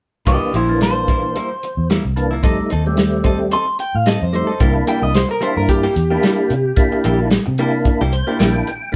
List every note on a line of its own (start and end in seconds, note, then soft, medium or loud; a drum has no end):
0.25 0.38 C2 medium
0.25 0.53 E3 medium
0.25 0.42 G3 medium
0.25 0.53 A#3 medium
0.25 0.42 A#3 medium
0.25 0.53 D4 medium
0.25 0.41 E4 medium
0.25 0.54 G4 medium
0.25 0.54 D#5 medium
0.25 kick medium
0.25 closed hi-hat medium
0.42 muted clean electric guitar stroke soft
0.54 1.37 A#1 medium
0.54 0.69 G3 soft
0.54 0.69 A#3 soft
0.54 0.80 E4 medium
0.54 0.68 E4 medium
0.54 0.81 C5 medium
0.54 closed hi-hat medium
0.69 1.38 E3 medium
0.69 1.38 A#3 medium
0.69 1.38 D4 medium
0.69 muted clean electric guitar stroke soft
0.81 1.87 C5 medium
0.81 muted clean electric guitar stroke soft
0.81 snare medium
0.81 closed hi-hat medium
1.08 1.23 G3 soft
1.08 1.23 A#3 medium
1.08 1.22 E4 medium
1.08 kick medium
1.08 closed hi-hat medium
1.23 muted clean electric guitar stroke soft
1.36 1.51 G3 medium
1.36 1.51 A#3 medium
1.36 1.49 E4 medium
1.36 closed hi-hat medium
1.51 muted clean electric guitar stroke soft
1.63 muted clean electric guitar stroke soft
1.63 closed hi-hat medium
1.77 1.98 E2 medium
1.90 2.05 G3 medium
1.90 2.04 A#3 medium
1.90 2.03 E4 medium
1.90 snare medium
1.90 closed hi-hat medium
2.05 2.44 C2 medium
2.05 muted clean electric guitar stroke soft
2.16 2.35 E3 medium
2.16 2.35 A#3 medium
2.16 2.35 D4 medium
2.16 muted clean electric guitar stroke soft
2.16 closed hi-hat medium
2.31 2.42 A#3 soft
2.31 2.43 E4 medium
2.43 2.55 F2 medium
2.43 2.70 G3 medium
2.43 2.71 A3 medium
2.43 2.58 C4 medium
2.43 2.58 D#4 medium
2.43 2.70 D#4 medium
2.43 2.57 A4 medium
2.43 kick loud
2.43 closed hi-hat medium
2.58 muted clean electric guitar stroke soft
2.58 muted fingered electric bass stroke soft
2.70 3.55 D#2 medium
2.70 2.86 C4 medium
2.70 2.85 D#4 medium
2.70 2.84 A4 medium
2.70 closed hi-hat medium
2.85 3.55 G3 medium
2.85 3.56 A3 medium
2.85 3.56 C4 medium
2.85 muted clean electric guitar stroke soft
2.97 muted clean electric guitar stroke soft
2.97 snare medium
2.97 closed hi-hat medium
3.24 3.40 C4 medium
3.24 3.40 D#4 medium
3.24 3.38 A4 medium
3.24 kick medium
3.24 closed hi-hat medium
3.39 muted clean electric guitar stroke soft
3.51 3.67 C4 medium
3.51 3.66 D#4 medium
3.51 3.65 A4 medium
3.51 3.79 C6 medium
3.51 closed hi-hat medium
3.67 muted clean electric guitar stroke soft
3.79 3.95 G5 medium
3.79 muted clean electric guitar stroke soft
3.79 closed hi-hat soft
3.95 4.15 A2 medium
3.95 4.07 F5 medium
4.06 4.21 C4 medium
4.06 4.21 D#4 medium
4.06 4.20 A4 medium
4.06 4.23 D#5 medium
4.06 snare medium
4.06 closed hi-hat medium
4.21 4.42 F2 medium
4.21 4.34 C5 medium
4.21 muted clean electric guitar stroke soft
4.33 4.52 G3 medium
4.33 4.52 A3 medium
4.33 4.52 D#4 medium
4.33 4.61 C5 medium
4.33 muted clean electric guitar stroke soft
4.33 closed hi-hat medium
4.47 4.60 D#4 soft
4.47 4.60 A4 soft
4.60 4.81 C2 medium
4.60 4.75 G3 medium
4.60 4.75 A#3 medium
4.60 5.14 A#3 medium
4.60 5.14 D4 medium
4.60 5.14 E4 medium
4.60 4.74 E4 medium
4.60 4.74 G4 medium
4.60 kick loud
4.60 closed hi-hat medium
4.75 muted clean electric guitar stroke soft
4.87 5.02 G3 medium
4.87 5.02 A#3 medium
4.87 5.02 E4 medium
4.87 5.01 G4 medium
4.87 5.03 G5 medium
4.87 closed hi-hat medium
5.02 5.23 C2 medium
5.02 5.15 D#5 medium
5.02 muted clean electric guitar stroke soft
5.14 5.30 C5 medium
5.14 snare medium
5.14 closed hi-hat medium
5.29 5.42 A#4 medium
5.29 muted clean electric guitar stroke soft
5.41 5.56 G3 medium
5.41 5.56 A#3 medium
5.41 5.87 A#3 medium
5.41 5.87 D4 medium
5.41 5.87 E4 medium
5.41 5.56 E4 medium
5.41 5.55 G4 medium
5.41 5.57 C5 medium
5.41 closed hi-hat medium
5.56 5.87 G2 medium
5.56 5.69 A#4 medium
5.56 muted clean electric guitar stroke soft
5.69 7.28 G4 medium
5.69 muted clean electric guitar stroke soft
5.69 kick medium
5.69 closed hi-hat medium
5.83 5.95 G3 soft
5.83 5.95 A#3 medium
5.83 5.96 E4 medium
5.83 5.96 G4 medium
5.96 6.17 E2 medium
5.96 muted clean electric guitar stroke soft
5.96 closed hi-hat medium
6.10 6.54 A#3 medium
6.10 6.22 A#3 soft
6.10 6.54 D4 medium
6.10 6.23 E4 soft
6.10 6.54 E4 medium
6.10 6.23 G4 soft
6.23 6.38 G3 medium
6.23 6.38 A#3 medium
6.23 6.37 E4 medium
6.23 6.37 G4 medium
6.23 snare medium
6.23 closed hi-hat medium
6.50 6.71 C3 medium
6.50 muted clean electric guitar stroke soft
6.50 closed hi-hat medium
6.76 7.30 A#3 medium
6.76 7.30 D4 medium
6.76 7.30 E4 medium
6.76 kick loud
6.76 closed hi-hat medium
6.92 muted clean electric guitar stroke soft
7.04 7.37 A#1 medium
7.04 7.19 G3 medium
7.04 7.19 A#3 medium
7.04 7.19 E4 medium
7.04 7.18 G4 medium
7.04 closed hi-hat medium
7.20 muted clean electric guitar stroke soft
7.31 snare loud
7.31 closed hi-hat medium
7.46 7.89 C3 medium
7.46 muted clean electric guitar stroke soft
7.58 7.74 G3 medium
7.58 8.04 A#3 medium
7.58 7.74 A#3 medium
7.58 8.04 D4 medium
7.58 8.04 E4 medium
7.58 7.73 E4 medium
7.58 7.73 G4 medium
7.58 closed hi-hat medium
7.74 muted clean electric guitar stroke soft
7.85 muted clean electric guitar stroke soft
7.85 kick medium
7.85 closed hi-hat medium
8.01 8.22 C2 medium
8.01 8.12 G3 medium
8.01 8.13 A#3 medium
8.01 8.13 E4 medium
8.01 8.13 G4 medium
8.12 8.38 C5 medium
8.12 muted clean electric guitar stroke soft
8.12 closed hi-hat medium
8.27 8.70 A#3 medium
8.27 8.39 A#3 soft
8.27 8.70 D4 medium
8.27 8.70 E4 medium
8.27 8.40 E4 medium
8.27 8.40 G4 medium
8.39 8.61 A#1 medium
8.39 8.54 G3 medium
8.39 8.55 A#3 medium
8.39 8.55 E4 medium
8.39 8.54 G4 medium
8.39 8.90 G5 medium
8.39 snare medium
8.39 closed hi-hat medium
8.55 muted clean electric guitar stroke soft
8.67 muted clean electric guitar stroke soft
8.67 closed hi-hat medium
8.92 8.96 A#3 medium
8.92 8.96 E4 medium